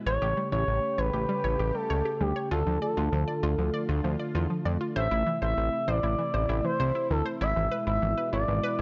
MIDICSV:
0, 0, Header, 1, 5, 480
1, 0, Start_track
1, 0, Tempo, 612245
1, 50, Time_signature, 4, 2, 24, 8
1, 6913, End_track
2, 0, Start_track
2, 0, Title_t, "Analog synth lead"
2, 0, Program_c, 0, 81
2, 49, Note_on_c, 0, 73, 110
2, 384, Note_off_c, 0, 73, 0
2, 407, Note_on_c, 0, 73, 107
2, 768, Note_on_c, 0, 71, 105
2, 780, Note_off_c, 0, 73, 0
2, 1368, Note_on_c, 0, 69, 96
2, 1380, Note_off_c, 0, 71, 0
2, 1722, Note_off_c, 0, 69, 0
2, 1727, Note_on_c, 0, 67, 89
2, 1952, Note_off_c, 0, 67, 0
2, 1966, Note_on_c, 0, 69, 92
2, 2191, Note_off_c, 0, 69, 0
2, 2208, Note_on_c, 0, 69, 85
2, 3137, Note_off_c, 0, 69, 0
2, 3891, Note_on_c, 0, 76, 113
2, 4225, Note_off_c, 0, 76, 0
2, 4252, Note_on_c, 0, 76, 109
2, 4611, Note_on_c, 0, 74, 107
2, 4623, Note_off_c, 0, 76, 0
2, 5208, Note_off_c, 0, 74, 0
2, 5213, Note_on_c, 0, 72, 101
2, 5546, Note_off_c, 0, 72, 0
2, 5571, Note_on_c, 0, 69, 88
2, 5678, Note_off_c, 0, 69, 0
2, 5812, Note_on_c, 0, 76, 108
2, 6146, Note_off_c, 0, 76, 0
2, 6172, Note_on_c, 0, 76, 103
2, 6506, Note_off_c, 0, 76, 0
2, 6530, Note_on_c, 0, 74, 106
2, 6913, Note_off_c, 0, 74, 0
2, 6913, End_track
3, 0, Start_track
3, 0, Title_t, "Synth arpeggio sound"
3, 0, Program_c, 1, 84
3, 51, Note_on_c, 1, 73, 102
3, 130, Note_off_c, 1, 73, 0
3, 171, Note_on_c, 1, 67, 78
3, 250, Note_off_c, 1, 67, 0
3, 291, Note_on_c, 1, 55, 75
3, 370, Note_off_c, 1, 55, 0
3, 410, Note_on_c, 1, 73, 80
3, 490, Note_off_c, 1, 73, 0
3, 770, Note_on_c, 1, 73, 90
3, 849, Note_off_c, 1, 73, 0
3, 889, Note_on_c, 1, 67, 77
3, 969, Note_off_c, 1, 67, 0
3, 1009, Note_on_c, 1, 55, 87
3, 1089, Note_off_c, 1, 55, 0
3, 1129, Note_on_c, 1, 73, 85
3, 1209, Note_off_c, 1, 73, 0
3, 1249, Note_on_c, 1, 67, 84
3, 1329, Note_off_c, 1, 67, 0
3, 1370, Note_on_c, 1, 55, 70
3, 1450, Note_off_c, 1, 55, 0
3, 1490, Note_on_c, 1, 73, 95
3, 1569, Note_off_c, 1, 73, 0
3, 1609, Note_on_c, 1, 67, 76
3, 1689, Note_off_c, 1, 67, 0
3, 1730, Note_on_c, 1, 55, 75
3, 1809, Note_off_c, 1, 55, 0
3, 1850, Note_on_c, 1, 73, 85
3, 1929, Note_off_c, 1, 73, 0
3, 1970, Note_on_c, 1, 65, 99
3, 2050, Note_off_c, 1, 65, 0
3, 2090, Note_on_c, 1, 53, 70
3, 2170, Note_off_c, 1, 53, 0
3, 2210, Note_on_c, 1, 74, 91
3, 2290, Note_off_c, 1, 74, 0
3, 2330, Note_on_c, 1, 65, 75
3, 2409, Note_off_c, 1, 65, 0
3, 2450, Note_on_c, 1, 53, 78
3, 2529, Note_off_c, 1, 53, 0
3, 2569, Note_on_c, 1, 74, 80
3, 2649, Note_off_c, 1, 74, 0
3, 2690, Note_on_c, 1, 65, 85
3, 2770, Note_off_c, 1, 65, 0
3, 2809, Note_on_c, 1, 53, 71
3, 2889, Note_off_c, 1, 53, 0
3, 2929, Note_on_c, 1, 74, 95
3, 3009, Note_off_c, 1, 74, 0
3, 3048, Note_on_c, 1, 65, 79
3, 3128, Note_off_c, 1, 65, 0
3, 3168, Note_on_c, 1, 53, 82
3, 3248, Note_off_c, 1, 53, 0
3, 3289, Note_on_c, 1, 74, 81
3, 3369, Note_off_c, 1, 74, 0
3, 3409, Note_on_c, 1, 65, 91
3, 3489, Note_off_c, 1, 65, 0
3, 3529, Note_on_c, 1, 53, 69
3, 3609, Note_off_c, 1, 53, 0
3, 3649, Note_on_c, 1, 74, 86
3, 3729, Note_off_c, 1, 74, 0
3, 3769, Note_on_c, 1, 65, 79
3, 3849, Note_off_c, 1, 65, 0
3, 3888, Note_on_c, 1, 72, 105
3, 3969, Note_off_c, 1, 72, 0
3, 4008, Note_on_c, 1, 64, 81
3, 4088, Note_off_c, 1, 64, 0
3, 4128, Note_on_c, 1, 52, 74
3, 4208, Note_off_c, 1, 52, 0
3, 4248, Note_on_c, 1, 72, 82
3, 4329, Note_off_c, 1, 72, 0
3, 4609, Note_on_c, 1, 72, 93
3, 4689, Note_off_c, 1, 72, 0
3, 4729, Note_on_c, 1, 64, 77
3, 4809, Note_off_c, 1, 64, 0
3, 4849, Note_on_c, 1, 52, 82
3, 4929, Note_off_c, 1, 52, 0
3, 4969, Note_on_c, 1, 72, 82
3, 5049, Note_off_c, 1, 72, 0
3, 5089, Note_on_c, 1, 64, 86
3, 5169, Note_off_c, 1, 64, 0
3, 5209, Note_on_c, 1, 52, 70
3, 5289, Note_off_c, 1, 52, 0
3, 5329, Note_on_c, 1, 72, 93
3, 5409, Note_off_c, 1, 72, 0
3, 5449, Note_on_c, 1, 64, 77
3, 5529, Note_off_c, 1, 64, 0
3, 5569, Note_on_c, 1, 52, 77
3, 5649, Note_off_c, 1, 52, 0
3, 5689, Note_on_c, 1, 72, 87
3, 5769, Note_off_c, 1, 72, 0
3, 5810, Note_on_c, 1, 64, 99
3, 5889, Note_off_c, 1, 64, 0
3, 5929, Note_on_c, 1, 52, 70
3, 6009, Note_off_c, 1, 52, 0
3, 6048, Note_on_c, 1, 71, 90
3, 6129, Note_off_c, 1, 71, 0
3, 6169, Note_on_c, 1, 64, 76
3, 6249, Note_off_c, 1, 64, 0
3, 6289, Note_on_c, 1, 52, 76
3, 6369, Note_off_c, 1, 52, 0
3, 6410, Note_on_c, 1, 71, 80
3, 6489, Note_off_c, 1, 71, 0
3, 6529, Note_on_c, 1, 64, 85
3, 6609, Note_off_c, 1, 64, 0
3, 6649, Note_on_c, 1, 52, 72
3, 6729, Note_off_c, 1, 52, 0
3, 6770, Note_on_c, 1, 71, 99
3, 6849, Note_off_c, 1, 71, 0
3, 6913, End_track
4, 0, Start_track
4, 0, Title_t, "Analog synth pad"
4, 0, Program_c, 2, 89
4, 49, Note_on_c, 2, 49, 78
4, 49, Note_on_c, 2, 57, 72
4, 49, Note_on_c, 2, 67, 83
4, 1950, Note_off_c, 2, 49, 0
4, 1950, Note_off_c, 2, 67, 0
4, 1970, Note_on_c, 2, 50, 77
4, 1971, Note_on_c, 2, 65, 84
4, 3871, Note_off_c, 2, 50, 0
4, 3871, Note_off_c, 2, 65, 0
4, 3888, Note_on_c, 2, 48, 73
4, 3888, Note_on_c, 2, 64, 81
4, 5778, Note_off_c, 2, 57, 0
4, 5790, Note_off_c, 2, 48, 0
4, 5811, Note_on_c, 2, 47, 79
4, 5812, Note_on_c, 2, 56, 68
4, 6913, Note_off_c, 2, 47, 0
4, 6913, Note_off_c, 2, 56, 0
4, 6913, Note_off_c, 2, 64, 0
4, 6913, End_track
5, 0, Start_track
5, 0, Title_t, "Analog synth bass"
5, 0, Program_c, 3, 38
5, 50, Note_on_c, 3, 33, 108
5, 146, Note_off_c, 3, 33, 0
5, 170, Note_on_c, 3, 33, 99
5, 266, Note_off_c, 3, 33, 0
5, 410, Note_on_c, 3, 33, 101
5, 506, Note_off_c, 3, 33, 0
5, 530, Note_on_c, 3, 33, 102
5, 626, Note_off_c, 3, 33, 0
5, 770, Note_on_c, 3, 33, 101
5, 866, Note_off_c, 3, 33, 0
5, 890, Note_on_c, 3, 33, 89
5, 986, Note_off_c, 3, 33, 0
5, 1131, Note_on_c, 3, 33, 99
5, 1226, Note_off_c, 3, 33, 0
5, 1250, Note_on_c, 3, 33, 107
5, 1346, Note_off_c, 3, 33, 0
5, 1490, Note_on_c, 3, 37, 91
5, 1586, Note_off_c, 3, 37, 0
5, 1730, Note_on_c, 3, 38, 94
5, 1826, Note_off_c, 3, 38, 0
5, 1970, Note_on_c, 3, 38, 107
5, 2066, Note_off_c, 3, 38, 0
5, 2090, Note_on_c, 3, 38, 105
5, 2186, Note_off_c, 3, 38, 0
5, 2330, Note_on_c, 3, 38, 101
5, 2426, Note_off_c, 3, 38, 0
5, 2450, Note_on_c, 3, 38, 98
5, 2546, Note_off_c, 3, 38, 0
5, 2689, Note_on_c, 3, 38, 96
5, 2785, Note_off_c, 3, 38, 0
5, 2809, Note_on_c, 3, 38, 100
5, 2905, Note_off_c, 3, 38, 0
5, 3050, Note_on_c, 3, 38, 109
5, 3146, Note_off_c, 3, 38, 0
5, 3169, Note_on_c, 3, 38, 96
5, 3265, Note_off_c, 3, 38, 0
5, 3409, Note_on_c, 3, 40, 99
5, 3506, Note_off_c, 3, 40, 0
5, 3649, Note_on_c, 3, 41, 87
5, 3745, Note_off_c, 3, 41, 0
5, 3889, Note_on_c, 3, 33, 110
5, 3985, Note_off_c, 3, 33, 0
5, 4009, Note_on_c, 3, 33, 98
5, 4105, Note_off_c, 3, 33, 0
5, 4249, Note_on_c, 3, 33, 98
5, 4345, Note_off_c, 3, 33, 0
5, 4369, Note_on_c, 3, 33, 100
5, 4465, Note_off_c, 3, 33, 0
5, 4609, Note_on_c, 3, 33, 103
5, 4705, Note_off_c, 3, 33, 0
5, 4730, Note_on_c, 3, 33, 103
5, 4826, Note_off_c, 3, 33, 0
5, 4970, Note_on_c, 3, 33, 93
5, 5066, Note_off_c, 3, 33, 0
5, 5091, Note_on_c, 3, 33, 102
5, 5186, Note_off_c, 3, 33, 0
5, 5330, Note_on_c, 3, 36, 98
5, 5426, Note_off_c, 3, 36, 0
5, 5570, Note_on_c, 3, 38, 93
5, 5666, Note_off_c, 3, 38, 0
5, 5810, Note_on_c, 3, 32, 107
5, 5906, Note_off_c, 3, 32, 0
5, 5930, Note_on_c, 3, 32, 99
5, 6026, Note_off_c, 3, 32, 0
5, 6169, Note_on_c, 3, 32, 92
5, 6266, Note_off_c, 3, 32, 0
5, 6290, Note_on_c, 3, 32, 98
5, 6386, Note_off_c, 3, 32, 0
5, 6530, Note_on_c, 3, 32, 101
5, 6626, Note_off_c, 3, 32, 0
5, 6650, Note_on_c, 3, 32, 91
5, 6746, Note_off_c, 3, 32, 0
5, 6913, End_track
0, 0, End_of_file